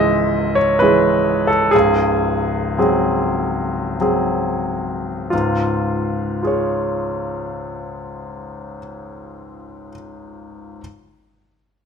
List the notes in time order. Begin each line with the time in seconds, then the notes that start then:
Already playing: C#1 C#2 E3 G#3 G#4 D#5 E5
0.55 C#5
0.79 E3 G#3 G#4 B4
1.47 A4
1.71 C#1 C#2 G#4
2.78 F#3 C4 G#4
4.00 F#3 C4 G#4
5.30 C#2 G#2 F4
6.43 F4 G#4
6.47 C#5